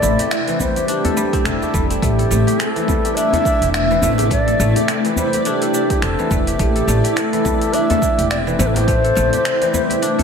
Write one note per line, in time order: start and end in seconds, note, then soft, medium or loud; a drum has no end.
0.00 0.14 A1 medium
0.00 10.23 C3 medium
0.00 0.46 E3 medium
0.00 0.59 G3 medium
0.00 1.45 A3 loud
0.00 10.23 A3 medium
0.00 0.30 C4 medium
0.00 0.88 D4 medium
0.00 10.23 E4 medium
0.00 2.63 E4 medium
0.00 0.19 G4 medium
0.00 1.04 A4 medium
0.00 2.74 C5 medium
0.00 0.33 D5 medium
0.00 djembe slap medium
0.00 cabasa medium
0.19 0.76 G4 medium
0.19 open hi-hat soft
0.19 djembe tone medium
0.19 cabasa soft
0.31 1.33 C4 medium
0.31 finger snap loud
0.31 open hi-hat soft
0.31 cabasa soft
0.48 2.75 E3 medium
0.48 open hi-hat soft
0.48 djembe slap soft
0.48 cabasa soft
0.60 1.15 G3 medium
0.60 0.86 C5 medium
0.60 kick medium
0.60 djembe bass medium
0.60 cabasa medium
0.76 1.62 G4 medium
0.76 open hi-hat soft
0.76 djembe tone soft
0.76 cabasa soft
0.88 3.17 D4 loud
0.88 1.47 G4 medium
0.88 open hi-hat medium
0.88 cabasa soft
1.05 2.18 A4 medium
1.05 open hi-hat soft
1.05 djembe bass medium
1.05 cabasa soft
1.17 1.73 G3 loud
1.17 cabasa medium
1.33 1.90 C4 medium
1.33 kick loud
1.33 open hi-hat soft
1.33 djembe slap soft
1.33 cabasa soft
1.45 1.56 E1 medium
1.45 2.02 A3 medium
1.45 1.90 A4 medium
1.45 finger snap medium
1.45 open hi-hat medium
1.45 cabasa soft
1.62 2.47 G4 medium
1.62 djembe slap soft
1.62 djembe tone medium
1.62 cabasa soft
1.74 1.95 E1 medium
1.74 2.87 G3 medium
1.74 kick loud
1.74 cabasa medium
1.90 2.59 C4 medium
1.90 open hi-hat soft
1.90 cabasa soft
2.02 2.23 A1 loud
2.02 2.30 A3 loud
2.02 2.60 G4 medium
2.02 kick loud
2.02 open hi-hat medium
2.02 cabasa soft
2.19 3.33 A4 medium
2.19 open hi-hat soft
2.19 cabasa soft
2.31 2.42 A1 loud
2.31 4.02 A3 loud
2.31 djembe slap soft
2.31 cabasa medium
2.47 3.04 G4 medium
2.47 open hi-hat soft
2.47 cabasa soft
2.55 3.74 C4 medium
2.55 3.17 A4 loud
2.55 10.23 D5 medium
2.60 finger snap medium
2.60 open hi-hat medium
2.60 cabasa soft
2.76 3.89 E3 medium
2.76 open hi-hat soft
2.76 djembe slap soft
2.76 cabasa soft
2.88 5.16 G3 medium
2.88 kick loud
2.88 djembe bass medium
2.88 cabasa medium
3.05 3.62 G4 medium
3.05 open hi-hat soft
3.05 cabasa soft
3.15 3.45 D4 loud
3.15 3.72 E5 loud
3.15 open hi-hat medium
3.15 cabasa soft
3.33 4.47 A4 medium
3.33 open hi-hat soft
3.33 djembe slap soft
3.33 djembe tone medium
3.33 djembe bass medium
3.33 cabasa soft
3.45 5.46 D4 medium
3.45 kick loud
3.45 cabasa medium
3.61 3.96 E1 medium
3.61 4.18 G4 medium
3.61 open hi-hat soft
3.61 cabasa soft
3.73 4.88 C4 medium
3.73 4.27 E5 loud
3.73 finger snap medium
3.73 open hi-hat medium
3.73 cabasa soft
3.91 5.04 E3 medium
3.91 cabasa soft
4.02 4.53 A1 medium
4.02 4.30 A3 medium
4.02 djembe bass medium
4.02 cabasa medium
4.18 4.75 G4 medium
4.18 open hi-hat soft
4.18 djembe slap medium
4.18 djembe tone medium
4.18 cabasa soft
4.31 4.59 A3 loud
4.31 4.86 D5 loud
4.31 kick loud
4.31 open hi-hat medium
4.31 cabasa soft
4.47 5.62 A4 medium
4.47 open hi-hat soft
4.47 cabasa soft
4.59 4.71 A1 loud
4.59 6.31 A3 loud
4.59 djembe slap soft
4.59 cabasa medium
4.76 5.33 G4 medium
4.76 open hi-hat soft
4.76 djembe tone medium
4.76 cabasa soft
4.88 6.02 C4 medium
4.88 finger snap loud
4.88 open hi-hat medium
4.88 cabasa soft
5.05 6.18 E3 medium
5.05 open hi-hat soft
5.05 cabasa soft
5.16 7.44 G3 medium
5.16 5.44 C5 medium
5.16 djembe bass medium
5.16 cabasa medium
5.33 5.90 G4 medium
5.33 open hi-hat soft
5.33 djembe tone soft
5.33 cabasa soft
5.45 5.74 D4 loud
5.45 5.51 A4 medium
5.45 open hi-hat medium
5.45 cabasa soft
5.50 6.04 G4 medium
5.62 6.75 A4 medium
5.62 open hi-hat soft
5.62 cabasa soft
5.74 7.73 D4 medium
5.74 cabasa medium
5.90 6.47 G4 medium
5.90 kick loud
5.90 open hi-hat soft
5.90 djembe slap medium
5.90 cabasa soft
6.02 6.13 E1 medium
6.02 7.16 C4 medium
6.02 6.47 A4 medium
6.02 finger snap medium
6.02 open hi-hat medium
6.02 cabasa soft
6.19 7.32 E3 medium
6.19 djembe slap soft
6.19 djembe tone medium
6.19 cabasa soft
6.31 6.52 E1 medium
6.31 6.59 A3 loud
6.31 kick loud
6.31 cabasa medium
6.47 7.04 G4 medium
6.47 open hi-hat soft
6.47 cabasa soft
6.59 6.80 A1 medium
6.59 6.87 A3 loud
6.59 6.64 A4 medium
6.59 kick loud
6.59 open hi-hat medium
6.59 cabasa soft
6.63 7.13 G4 loud
6.76 7.90 A4 medium
6.76 open hi-hat soft
6.76 cabasa soft
6.87 6.99 A1 loud
6.87 8.59 A3 loud
6.87 djembe slap medium
6.87 cabasa medium
7.04 7.61 G4 medium
7.04 open hi-hat soft
7.04 cabasa soft
7.16 8.30 C4 medium
7.16 7.75 A4 loud
7.16 7.20 C5 medium
7.16 finger snap loud
7.16 open hi-hat medium
7.16 cabasa soft
7.33 8.46 E3 medium
7.33 open hi-hat soft
7.33 djembe slap soft
7.33 cabasa soft
7.45 9.73 G3 medium
7.45 kick loud
7.45 djembe bass medium
7.45 cabasa medium
7.61 8.18 G4 medium
7.61 open hi-hat soft
7.61 cabasa soft
7.73 8.02 D4 loud
7.73 8.30 E5 loud
7.73 open hi-hat medium
7.73 cabasa soft
7.90 9.04 A4 medium
7.90 open hi-hat soft
7.90 djembe slap medium
7.90 djembe tone medium
7.90 djembe bass medium
7.90 cabasa soft
8.02 10.02 D4 medium
8.02 kick loud
8.02 cabasa medium
8.18 8.53 E1 medium
8.18 8.75 G4 medium
8.18 open hi-hat soft
8.18 cabasa soft
8.30 9.45 C4 medium
8.30 8.37 D5 loud
8.30 finger snap loud
8.30 open hi-hat medium
8.30 cabasa soft
8.47 9.60 E3 medium
8.47 cabasa soft
8.59 9.10 A1 loud
8.59 8.87 A3 loud
8.59 8.68 C5 loud
8.59 djembe bass medium
8.59 cabasa medium
8.67 8.77 A4 medium
8.75 9.33 G4 medium
8.75 10.23 C5 loud
8.75 open hi-hat medium
8.75 djembe slap medium
8.75 djembe tone medium
8.75 cabasa soft
8.88 9.16 A3 loud
8.88 kick loud
8.88 open hi-hat medium
8.88 cabasa soft
9.04 10.18 A4 medium
9.04 open hi-hat soft
9.04 cabasa soft
9.15 9.28 A1 loud
9.15 10.23 A3 loud
9.15 djembe slap medium
9.15 cabasa medium
9.33 9.89 G4 medium
9.33 open hi-hat soft
9.33 djembe tone medium
9.33 cabasa soft
9.45 10.23 C4 medium
9.45 finger snap loud
9.45 open hi-hat medium
9.45 cabasa soft
9.62 10.23 E3 medium
9.62 open hi-hat soft
9.62 djembe slap soft
9.62 cabasa soft
9.74 10.23 G3 medium
9.74 djembe bass medium
9.74 cabasa medium
9.90 10.23 G4 medium
9.90 open hi-hat soft
9.90 djembe tone soft
9.90 cabasa soft
10.02 10.23 D4 loud
10.02 open hi-hat medium
10.02 cabasa soft
10.19 10.23 A4 medium
10.19 open hi-hat soft
10.19 djembe bass medium
10.19 cabasa soft